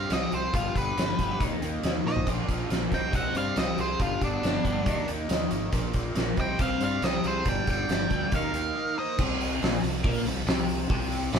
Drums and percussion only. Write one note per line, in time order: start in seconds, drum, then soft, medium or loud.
0.10 snare loud
0.10 closed hi-hat medium
0.32 closed hi-hat soft
0.54 kick loud
0.54 closed hi-hat medium
0.76 kick medium
0.76 closed hi-hat soft
0.98 snare loud
0.98 closed hi-hat medium
1.19 kick medium
1.19 closed hi-hat medium
1.41 kick loud
1.41 closed hi-hat medium
1.62 closed hi-hat medium
1.83 snare loud
1.83 closed hi-hat medium
2.07 snare soft
2.16 floor tom medium
2.27 kick loud
2.27 closed hi-hat medium
2.27 crash medium
2.49 kick medium
2.49 closed hi-hat medium
2.70 snare medium
2.70 closed hi-hat medium
2.92 kick medium
2.92 closed hi-hat soft
3.13 kick loud
3.13 closed hi-hat medium
3.35 closed hi-hat medium
3.56 snare loud
3.56 closed hi-hat medium
3.78 closed hi-hat medium
4.00 kick medium
4.00 closed hi-hat medium
4.21 kick medium
4.21 closed hi-hat medium
4.43 snare medium
4.43 closed hi-hat medium
4.65 kick medium
4.65 closed hi-hat medium
4.86 kick loud
4.86 closed hi-hat medium
5.08 closed hi-hat medium
5.29 snare loud
5.29 closed hi-hat medium
5.51 closed hi-hat medium
5.72 kick medium
5.72 closed hi-hat medium
5.94 kick medium
5.94 closed hi-hat medium
6.15 snare loud
6.15 closed hi-hat medium
6.37 kick medium
6.37 closed hi-hat medium
6.59 kick loud
6.59 closed hi-hat medium
6.81 closed hi-hat medium
7.02 snare loud
7.02 closed hi-hat medium
7.24 closed hi-hat soft
7.45 kick loud
7.45 closed hi-hat medium
7.67 kick medium
7.67 closed hi-hat medium
7.89 snare medium
7.89 closed hi-hat medium
8.10 kick medium
8.10 closed hi-hat medium
8.32 kick loud
8.32 closed hi-hat medium
8.54 closed hi-hat medium
9.19 kick loud
9.19 crash loud
9.41 open hi-hat medium
9.62 snare loud
9.62 open hi-hat medium
9.83 open hi-hat medium
10.04 kick loud
10.04 open hi-hat medium
10.26 snare soft
10.26 open hi-hat medium
10.47 snare loud
10.47 open hi-hat medium
10.69 open hi-hat medium
10.90 kick loud
10.90 open hi-hat medium
11.12 open hi-hat medium
11.33 snare loud
11.33 open hi-hat medium